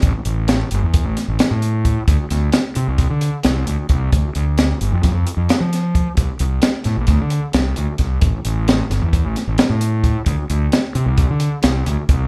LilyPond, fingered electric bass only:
\new Staff \with { instrumentName = "Fingered electric bass" } { \clef bass \time 9/8 \key a \phrygian \tempo 4. = 88 a,,16 r16 a,,4 g,,16 e,8 a,,16 r16 a,,16 r16 a,4~ a,16 | d,16 r16 d,8 r8 c16 c,8 d8 r16 c,8 d,16 r16 c,8 | d,16 r16 d,4 g,,16 f,16 f,16 f,16 r16 f,16 r16 f4~ f16 | c,16 r16 c,8 r8 a,16 bes,,16 d,16 d8 r16 c,8 d,16 r16 c,8 |
a,,16 r16 a,,4 g,,16 e,8 a,,16 r16 a,,16 r16 a,4~ a,16 | d,16 r16 d,8 r8 c16 c,8 d8 r16 c,8 d,16 r16 c,8 | }